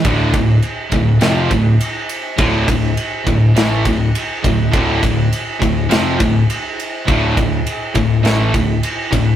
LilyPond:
<<
  \new Staff \with { instrumentName = "Distorted electric guitar" } { \clef bass \time 4/4 \key d \minor \tempo 4 = 102 <d, a, d>8 <d, a,>8 r8 <d, a,>8 <f, c f>8 <d, a,>8 r4 | <d, a, d>8 <d, a,>8 r8 <d, a,>8 <a, e a>8 <d, a,>8 r8 <d, a,>8 | <d, a, d>8 <d, a,>8 r8 <d, a,>8 <f, c f>8 <d, a,>8 r4 | <d, a, d>8 <d, a,>8 r8 <d, a,>8 <a, e a>8 <d, a,>8 r8 <d, a,>8 | }
  \new Staff \with { instrumentName = "Distorted electric guitar" } { \clef bass \time 4/4 \key d \minor <d, a, d>8 <d, a,>8 r8 <d, a,>8 <f, c f>8 <d, a,>8 r4 | <d, a, d>8 <d, a,>8 r8 <d, a,>8 <a, e a>8 <d, a,>8 r8 <d, a,>8 | <d, a, d>8 <d, a,>8 r8 <d, a,>8 <f, c f>8 <d, a,>8 r4 | <d, a, d>8 <d, a,>8 r8 <d, a,>8 <a, e a>8 <d, a,>8 r8 <d, a,>8 | }
  \new Staff \with { instrumentName = "Distorted electric guitar" } { \clef bass \time 4/4 \key d \minor <d, a, d>8 <d, a,>8 r8 <d, a,>8 <f, c f>8 <d, a,>8 r4 | <d, a, d>8 <d, a,>8 r8 <d, a,>8 <a, e a>8 <d, a,>8 r8 <d, a,>8 | <d, a, d>8 <d, a,>8 r8 <d, a,>8 <f, c f>8 <d, a,>8 r4 | <d, a, d>8 <d, a,>8 r8 <d, a,>8 <a, e a>8 <d, a,>8 r8 <d, a,>8 | }
  \new Staff \with { instrumentName = "Picked electric bass" } { \clef bass \time 4/4 \key d \minor d,,8 d,,8 r8 d,,8 f,,8 d,,8 r4 | d,,8 d,,8 r8 d,,8 a,,8 d,,8 r8 d,,8 | d,,8 d,,8 r8 d,,8 f,,8 d,,8 r4 | d,,8 d,,8 r8 d,,8 a,,8 d,,8 r8 d,,8 | }
  \new DrumStaff \with { instrumentName = "Drums" } \drummode { \time 4/4 <bd cymr>8 <bd cymr>8 cymr8 <bd cymr>8 <cymr sn>8 <bd cymr>8 cymr8 cymr8 | <bd cymr>8 <bd cymr>8 cymr8 <bd cymr>8 <cymr sn>8 <bd cymr>8 cymr8 <bd cymr>8 | <bd cymr>8 <bd cymr>8 cymr8 <bd cymr>8 <cymr sn>8 <bd cymr>8 cymr8 cymr8 | <bd cymr>8 <bd cymr>8 cymr8 <bd cymr>8 <cymr sn>8 <bd cymr>8 cymr8 <bd cymr>8 | }
>>